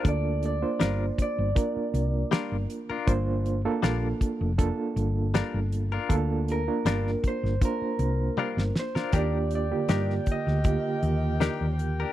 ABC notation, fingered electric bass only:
X:1
M:4/4
L:1/16
Q:"Swing 16ths" 1/4=79
K:Gm
V:1 name="Fingered electric bass" clef=bass
D,,4 G,,,2 z G,,, z2 C,,2 z G,,, z2 | G,,,4 B,,,2 z F,,,2 z G,,,3 G,,,3 | D,,4 G,,,2 z G,,, z2 C,,2 z G,,, z2 | E,,4 G,,2 z D,,2 z E,,3 E,,3 |]